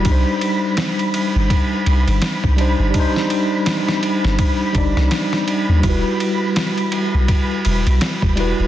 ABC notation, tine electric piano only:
X:1
M:4/4
L:1/8
Q:"Swing 16ths" 1/4=83
K:Clyd
V:1 name="Tine electric piano"
[G,D_Ec]6- [G,DEc] [G,DEc] | [G,D_Ec]4- [G,DEc] [G,DEd] z2 | [G,EFB]6- [G,EFB] [G,EFB] |]